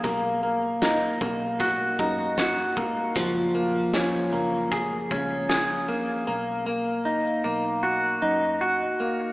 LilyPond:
<<
  \new Staff \with { instrumentName = "Clean electric guitar" } { \time 4/4 \key b \lydian \tempo 4 = 77 ais8 ais8 dis'8 ais8 fis'8 dis'8 fis'8 ais8 | eis8 ais8 cis'8 ais8 gis'8 cis'8 gis'8 ais8 | ais8 ais8 dis'8 ais8 fis'8 dis'8 fis'8 ais8 | }
  \new Staff \with { instrumentName = "Fingered electric bass" } { \clef bass \time 4/4 \key b \lydian b,,4. b,,4 fis,4 r8 | fis,,4. fis,,4 cis,4 r8 | b,,4. b,,4 fis,4 r8 | }
  \new DrumStaff \with { instrumentName = "Drums" } \drummode { \time 4/4 <hh bd>4 <hh sn tamb>8 bd8 <hh bd>8 bd8 <hh sn tamb>8 bd8 | <hh bd>4 <hh sn tamb>4 <hh bd>8 bd8 <hh sn tamb>4 | r4 r4 r4 r4 | }
>>